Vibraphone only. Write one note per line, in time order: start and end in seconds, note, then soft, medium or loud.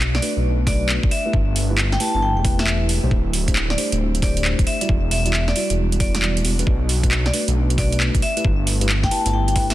0.15 0.31 D5 medium
0.67 0.86 D5 medium
1.11 1.31 E5 medium
1.92 1.99 G5 medium
2.00 2.09 A5 medium
2.15 2.20 A5 medium
2.22 2.32 G5 medium
2.37 2.42 G5 medium
2.59 2.64 E5 medium
2.67 2.76 E5 medium
3.70 3.87 D5 medium
4.23 4.42 D5 medium
4.67 4.86 E5 medium
5.11 5.21 E5 medium
5.26 5.31 E5 medium
5.48 5.53 D5 medium
5.56 5.65 D5 medium
6.00 6.09 D5 medium
6.15 6.20 D5 medium
7.26 7.42 D5 medium
7.78 7.97 D5 medium
8.22 8.42 E5 medium
9.04 9.10 G5 medium
9.11 9.20 A5 medium
9.26 9.31 A5 medium
9.33 9.43 G5 medium
9.48 9.53 G5 medium
9.70 9.74 E5 medium